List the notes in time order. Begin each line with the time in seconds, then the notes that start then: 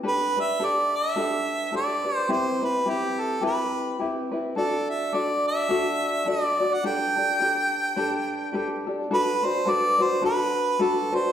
0.03 D4 G4 A4 B4
0.08 B4
0.37 D4 G4 B4 E5
0.60 D4 G4 A4 B4
0.65 D5
0.97 E5
1.16 D4 G4 A4 B4
1.72 D4 G4 A4 B4 D5
2.04 D4 G4 B4
2.16 C5
2.29 C4 E4 G4 B4 C5
2.61 C4 E4 B4
2.86 C4 E4 G4 B4
2.90 G4
3.20 A4
3.41 C4 E4 G4 B4
3.99 C4 E4 G4 B4
4.31 C4 E4 B4
4.56 D4 F#4 A4 D5
4.89 E5
5.13 D4 F#4 A4 D5
5.47 E5
5.69 D4 F#4 A4 D5
6.26 D4 F#4 A4 D5
6.59 D4 F#4 D5
6.74 F#5
6.84 D4 G4 A4 B4 G5
7.16 D4 G4 A4
7.41 D4 G4 A4 B4
7.96 D4 G4 A4 B4
8.53 D4 G4 A4 B4
8.87 D4 G4 A4
9.11 D4 F#4 A4 B4
9.43 D4 F#4 B4 C5
9.65 D4 F#4 A4 B4
9.70 D5
9.99 D4 F#4 B4 C5
10.22 D4 F#4 A4 B4
10.79 D4 F#4 A4 B4
11.12 D4 F#4 B4 C5